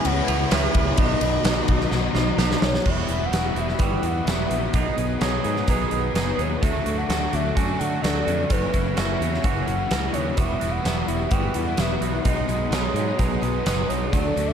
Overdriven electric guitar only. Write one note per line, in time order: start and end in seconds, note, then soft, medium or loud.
0.04 0.51 C#3 loud
0.04 0.30 G#3 medium
0.04 0.29 C#4 medium
0.04 0.27 E4 loud
0.28 0.52 G#3 medium
0.28 0.53 C#4 medium
0.28 0.54 E4 medium
0.52 0.97 C#3 medium
0.52 0.77 G#3 medium
0.52 0.76 C#4 medium
0.52 0.74 E4 medium
0.75 0.99 G#3 medium
0.75 0.98 C#4 medium
0.75 0.97 E4 medium
0.98 1.68 B2 medium
0.98 1.44 D#3 loud
0.98 1.45 F#3 loud
0.98 1.46 B3 loud
0.98 1.47 D#4 loud
1.45 1.91 D#3 medium
1.45 1.92 F#3 medium
1.45 1.93 B3 medium
1.45 1.94 D#4 medium
1.91 2.39 B2 medium
1.91 2.36 D#3 loud
1.91 2.17 F#3 medium
1.91 2.15 B3 medium
1.91 2.13 D#4 loud
2.14 2.37 F#3 medium
2.14 2.38 B3 medium
2.14 2.39 D#4 medium
2.37 2.83 D#3 medium
2.37 2.63 F#3 medium
2.37 2.61 B3 medium
2.37 2.59 D#4 medium
2.61 2.85 F#3 medium
2.61 2.84 B3 medium
2.61 2.83 D#4 medium
2.85 3.30 E3 medium
2.85 3.10 G3 medium
2.85 3.10 B3 medium
2.85 3.07 E4 loud
3.08 3.31 G3 soft
3.08 3.33 B3 medium
3.08 3.33 E4 medium
3.31 3.77 E3 medium
3.31 3.57 G3 medium
3.31 3.56 B3 medium
3.31 3.54 E4 medium
3.55 3.78 G3 medium
3.55 3.79 B3 medium
3.55 3.80 E4 medium
3.78 4.24 E3 medium
3.78 4.04 G3 medium
3.78 4.03 B3 medium
3.78 4.01 E4 medium
4.02 4.25 G3 medium
4.02 4.26 B3 medium
4.02 4.27 E4 medium
4.25 4.71 E3 medium
4.25 4.51 G3 medium
4.25 4.50 B3 medium
4.25 4.48 E4 medium
4.49 4.73 G3 soft
4.49 4.73 B3 medium
4.49 4.72 E4 medium
4.72 5.17 B2 medium
4.72 4.98 F#3 medium
4.72 4.96 B3 loud
4.72 4.94 D#4 loud
4.95 5.20 F#3 medium
4.95 5.20 B3 medium
4.95 5.21 D#4 medium
5.19 5.66 B2 medium
5.19 5.46 F#3 medium
5.19 5.43 B3 medium
5.19 5.42 D#4 medium
5.43 5.68 F#3 medium
5.43 5.68 B3 medium
5.43 5.70 D#4 medium
5.67 6.12 B2 medium
5.67 5.94 F#3 medium
5.67 5.91 B3 loud
5.67 5.90 D#4 loud
5.91 6.14 F#3 medium
5.91 6.15 B3 medium
5.91 6.16 D#4 medium
6.14 6.60 B2 medium
6.14 6.40 F#3 medium
6.14 6.39 B3 medium
6.14 6.36 D#4 medium
6.38 6.62 F#3 soft
6.38 6.61 B3 medium
6.38 6.60 D#4 medium
6.61 7.07 D3 medium
6.61 6.88 F#3 medium
6.61 6.85 A3 medium
6.65 6.84 D4 medium
6.85 7.09 F#3 medium
6.85 7.10 A3 medium
6.85 7.10 D4 medium
7.08 7.54 D3 medium
7.08 7.35 F#3 medium
7.08 7.33 A3 medium
7.08 7.31 D4 medium
7.32 7.56 F#3 medium
7.32 7.57 A3 medium
7.32 7.58 D4 medium
7.55 8.01 D3 medium
7.55 7.82 F#3 medium
7.55 7.79 A3 medium
7.55 7.77 D4 medium
7.78 8.03 F#3 medium
7.78 8.03 A3 medium
7.78 8.04 D4 medium
8.02 8.48 D3 medium
8.02 8.29 F#3 medium
8.02 8.26 A3 medium
8.02 8.25 D4 medium
8.26 8.51 F#3 soft
8.26 8.49 A3 medium
8.26 8.48 D4 medium
8.49 8.97 F#2 medium
8.49 8.94 C#3 medium
8.49 8.76 E3 loud
8.49 8.73 A#3 medium
8.49 8.73 E4 medium
8.73 8.97 E3 medium
8.73 8.97 A#3 medium
8.73 8.99 E4 medium
8.96 9.43 C#3 medium
8.96 9.22 E3 medium
8.96 9.20 A#3 medium
8.96 9.19 E4 medium
9.20 9.44 E3 medium
9.20 9.45 A#3 medium
9.20 9.46 E4 medium
9.44 9.91 F#2 medium
9.44 9.90 C#3 medium
9.44 9.69 E3 medium
9.44 9.67 A#3 medium
9.44 9.65 E4 medium
9.66 9.91 E3 medium
9.66 9.92 A#3 medium
9.66 9.93 E4 medium
9.91 10.36 C#3 medium
9.91 10.16 E3 medium
9.91 10.14 A#3 medium
9.91 10.13 E4 medium
10.14 10.36 E3 medium
10.14 10.37 A#3 medium
10.14 10.36 E4 medium
10.37 10.83 E3 medium
10.37 10.63 G3 medium
10.37 10.62 B3 loud
10.37 10.59 E4 medium
10.61 10.84 G3 medium
10.61 10.86 B3 medium
10.61 10.86 E4 medium
10.84 11.29 E3 medium
10.84 11.10 G3 medium
10.84 11.09 B3 medium
10.84 11.06 E4 medium
11.07 11.31 G3 medium
11.07 11.32 B3 medium
11.07 11.33 E4 medium
11.31 11.76 E3 medium
11.31 11.56 G3 medium
11.31 11.54 B3 medium
11.31 11.52 E4 medium
11.53 11.78 G3 soft
11.53 11.79 B3 medium
11.53 11.80 E4 medium
11.77 12.24 E3 medium
11.77 12.03 G3 medium
11.77 12.02 B3 medium
11.77 12.00 E4 medium
12.01 12.25 G3 soft
12.01 12.24 B3 medium
12.01 12.24 E4 medium
12.25 12.70 B2 medium
12.25 12.50 F#3 medium
12.25 12.48 B3 medium
12.25 12.46 D#4 loud
12.47 12.72 F#3 medium
12.47 12.72 B3 medium
12.47 12.73 D#4 medium
12.71 13.16 B2 medium
12.71 12.97 F#3 medium
12.71 12.95 B3 medium
12.71 12.93 D#4 medium
12.94 13.18 F#3 medium
12.94 13.18 B3 medium
12.94 13.19 D#4 medium
13.17 13.63 B2 medium
13.17 13.44 F#3 medium
13.17 13.41 B3 medium
13.17 13.39 D#4 medium
13.40 13.65 F#3 medium
13.40 13.65 B3 medium
13.40 13.66 D#4 medium
13.64 14.11 B2 medium
13.64 13.92 F#3 medium
13.64 13.89 B3 medium
13.64 13.88 D#4 medium
13.89 14.13 F#3 soft
13.89 14.12 B3 medium
13.89 14.11 D#4 medium
14.12 14.53 D3 medium
14.12 14.39 F#3 medium
14.12 14.36 A3 loud
14.12 14.34 D4 loud
14.35 14.53 F#3 medium
14.35 14.53 A3 medium
14.35 14.53 D4 medium